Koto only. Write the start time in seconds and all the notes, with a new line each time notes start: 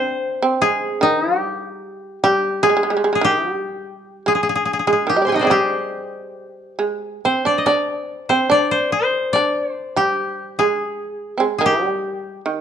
Already playing: D4 C5
0.62 G#4
1.03 D#4
1.41 G4
2.24 G4
2.63 G#4
2.92 G4
3.15 G#4
3.25 G4
4.28 G#4
4.35 G#4
4.43 G#4
4.49 G#4
4.55 G#4
4.65 G#4
4.73 G#4
4.79 G#4
4.87 G#4
4.93 G#4
5.09 G4
5.27 G#5 C6
5.32 D#5 G5
5.39 C5 D5
5.47 G#4
5.51 G4
7.25 C5
7.46 D5
7.58 D#5
7.66 D5
8.29 C5
8.51 D5
8.71 C5
8.92 C5
9.33 D5
9.72 C5
9.97 G4
10.59 G#4
11.58 G#4
11.66 G4